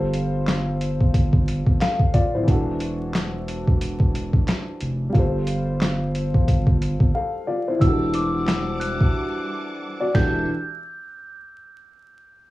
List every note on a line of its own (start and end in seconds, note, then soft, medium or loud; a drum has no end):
0.00 1.63 G1 loud
0.00 2.41 G3 medium
0.00 1.76 F4 medium
0.00 1.78 A4 medium
0.00 1.80 C5 medium
0.14 closed hi-hat medium
0.48 snare loud
0.48 clap medium
0.48 closed hi-hat loud
0.81 closed hi-hat medium
1.01 kick medium
1.14 kick medium
1.14 closed hi-hat loud
1.33 kick medium
1.48 closed hi-hat medium
1.67 1.79 G1 medium
1.67 kick medium
1.81 2.13 A4 medium
1.81 2.13 F5 medium
1.81 snare loud
1.81 clap loud
1.81 closed hi-hat medium
2.00 kick medium
2.14 2.33 F4 medium
2.14 2.32 D5 medium
2.14 kick loud
2.14 closed hi-hat medium
2.34 2.50 D1 medium
2.34 2.66 E4 medium
2.34 2.66 C5 medium
2.44 5.08 E3 medium
2.44 5.10 D4 medium
2.48 4.44 E1 loud
2.48 5.12 F#4 medium
2.48 kick loud
2.48 closed hi-hat medium
2.53 5.13 A4 medium
2.80 closed hi-hat medium
3.14 snare loud
3.14 clap medium
3.14 closed hi-hat loud
3.48 closed hi-hat medium
3.67 kick medium
3.81 closed hi-hat loud
4.00 kick medium
4.15 closed hi-hat medium
4.33 kick medium
4.48 snare loud
4.48 clap loud
4.48 closed hi-hat medium
4.81 5.08 F1 medium
4.81 closed hi-hat medium
5.10 7.75 G3 medium
5.10 7.10 F4 medium
5.15 6.96 G1 loud
5.15 7.11 A4 medium
5.15 kick loud
5.15 closed hi-hat medium
5.19 7.13 C5 medium
5.47 closed hi-hat medium
5.81 snare loud
5.81 clap medium
5.81 closed hi-hat loud
6.15 closed hi-hat medium
6.34 kick medium
6.48 kick medium
6.48 closed hi-hat loud
6.67 kick medium
6.82 closed hi-hat medium
7.00 7.12 G1 loud
7.00 kick medium
7.15 7.47 A4 medium
7.15 7.46 F5 medium
7.47 7.66 F4 medium
7.47 7.66 D5 medium
7.68 8.00 E4 medium
7.68 7.99 C5 medium
7.79 9.11 E1 loud
7.79 10.10 E3 medium
7.79 10.12 G3 medium
7.79 9.77 D4 medium
7.79 10.12 F#5 medium
7.79 10.12 A5 medium
7.79 10.12 D6 medium
7.79 8.11 E6 medium
7.79 kick loud
7.79 closed hi-hat medium
7.84 9.79 F#4 medium
7.84 9.80 G4 medium
7.89 9.81 A4 medium
8.14 8.77 D6 medium
8.14 closed hi-hat medium
8.48 finger snap medium
8.48 snare loud
8.48 clap medium
8.48 closed hi-hat loud
8.80 9.11 F#6 medium
8.80 closed hi-hat medium
9.01 kick medium
10.00 10.13 F#4 medium
10.00 10.14 D5 medium
10.14 10.46 E1 loud
10.14 10.46 E3 medium
10.14 10.46 D4 medium
10.14 10.46 F#4 medium
10.14 10.46 G4 medium
10.14 10.46 A4 medium
10.14 10.46 E5 medium
10.14 10.46 A5 medium
10.14 10.46 G6 medium
10.14 finger snap medium
10.14 kick loud
10.14 snare medium